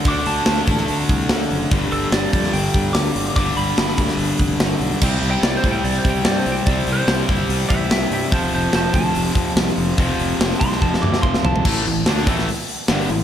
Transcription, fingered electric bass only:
\new Staff \with { instrumentName = "Fingered electric bass" } { \clef bass \time 4/4 \key a \minor \tempo 4 = 145 d,8 d,8 d,8 a,,8 d,8 c,8 d,8 fis,,8 | g,,8 g,,8 g,,8 f,8 g,,8 g,8 d,8 g,,8 | g,,8 g,,8 g,,8 d,8 g,,8 f,,8 g,,8 b,,8 | c,8 c,8 c,8 a,8 c,8 c8 g,8 c,8 |
c,8 c,8 c,8 g,,8 c,8 a,,8 c,8 g,8 | f,,8 f,,8 f,,8 d,8 f,,8 f,8 c,8 f,,8 | f,,8 f,,8 f,,8 c,8 f,,8 d,8 f,,8 c,8 | a,,8 a,,8 d,8 a,,8 r4 g,,8 a,,8 | }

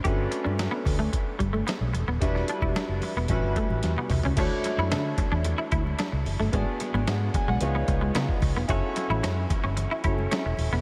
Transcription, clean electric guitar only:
\new Staff \with { instrumentName = "Clean electric guitar" } { \time 4/4 \key d \major \tempo 4 = 111 g'16 r8 d'16 r16 b16 r16 a16 r8 g16 a16 b16 r8 b16 | r8 d'16 e'16 d'16 r8 b16 r8 a16 r8 b16 r16 cis'16 | d'16 r8 e'16 d'16 r8 d'16 r16 e'16 e'16 r16 d'16 r8 a16 | gis16 r8 b16 gis16 r8 gis16 r16 b16 r16 gis16 b16 r8 b16 |
fis'16 r8 e'16 cis'16 r8 cis'16 r16 e'16 e'16 r16 cis'16 r8 b16 | }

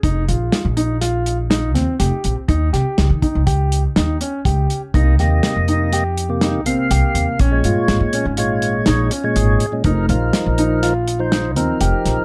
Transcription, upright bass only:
\new Staff \with { instrumentName = "Upright bass" } { \clef bass \time 5/4 \key f \minor \tempo 4 = 122 f,,8 bes,,8 r16 bes,,2~ bes,,16 ees,16 r16 f,,16 r16 bes,,16 r16 | ees,8 c16 r16 des,16 ees16 r16 des,4~ des,16 ees,8 r8 des,8 r8 | c,8 ees,8 r16 f,2~ f,16 bes,,16 r16 c,16 r16 ees,16 r16 | bes,,8 g,16 r16 aes,,16 bes,16 r16 aes,,4~ aes,,16 bes,,8 r8 aes,,8 r8 |
f,,8 bes,,8 r16 bes,,2~ bes,,16 ees,16 r16 f,,16 r16 bes,,16 r16 | }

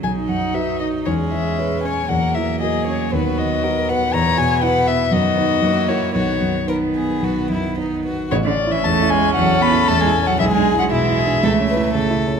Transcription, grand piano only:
\new Staff \with { instrumentName = "Grand piano" } { \time 4/4 \key b \major \tempo 4 = 116 b,,8 fis,8 <fis' b'>8 dis'8 e,8 e8 <gis' cis''>8 cis'8 | e,8 e8 <fis' ais'>8 cis'8 dis,8 dis8 <fis' b'>8 b8 | e,8 b,8 <e' b'>8 b8 fis,8 <dis' b'>8 fis,8 <e' ais'>8 | b,,8 fis,8 <dis' b'>8 b8 b,,8 fis,8 <dis' b'>8 b8 |
\key a \major \tuplet 3/2 { a,,8 cis'8 e'8 e,8 e'8 cis'8 e,8 cis'8 e'8 e,8 e'8 cis'8 } | \tuplet 3/2 { b,,8 d'8 e'8 b,8 e'8 d'8 cis,8 cis'8 e'8 cis8 e'8 cis'8 } | }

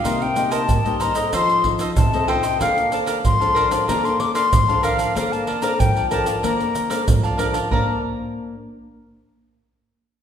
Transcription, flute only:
\new Staff \with { instrumentName = "Flute" } { \time 4/4 \key bes \major \tempo 4 = 94 f''16 g''8 a''8. bes''8 c'''8 r8 a''8 g''8 | f''8 a''8 c'''4 bes''16 c'''16 d'''16 c'''8. f''8~ | f''16 a''8 bes''16 g''8 a''8 bes''4 r4 | bes''8 r2. r8 | }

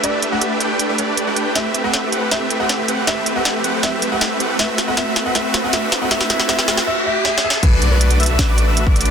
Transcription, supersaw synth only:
\new Staff \with { instrumentName = "Supersaw synth" } { \time 4/4 \key a \dorian \tempo 4 = 158 <a d' g' b' e''>8. <a d' g' b' e''>8. <a d' g' b' g''>8. <a d' g' b' e''>16 <a d' g' b' d''>8. <a d' g' b' g''>8. | <a c' g' b' e''>8. <a c' g' b' e''>8. <a c' g' b' fis''>8 <a c' g' b' e''>8. <a c' g' b' e''>8. <a c' g' b' fis''>8 | <a c' g' b' e''>8. <a c' g' b' e''>8. <a c' g' b' fis''>8 <a c' g' b' e''>8. <a c' g' b' e''>8. <a c' g' b' fis''>8 | <a c' fis' b' e''>8. <a c' fis' b' e''>16 <a c' fis' b' e''>8. <a c' fis' b' e''>16 <a c' fis' b' e''>8. <a c' fis' b' e''>16 <a c' fis' b' e''>8. <a c' fis' b' e''>16 |
<a c' fis' b' e''>8 <a c' fis' b' e''>8 <a c' fis' b' e''>8 <a c' fis' b' e''>8 r2 | <a d' fis' b' d''>8. <a d' fis' b' d''>8. <a d' fis' b' e''>8. <a d' fis' b' d''>8 <a d' fis' b' e''>8 <a d' fis' b' d''>8. | }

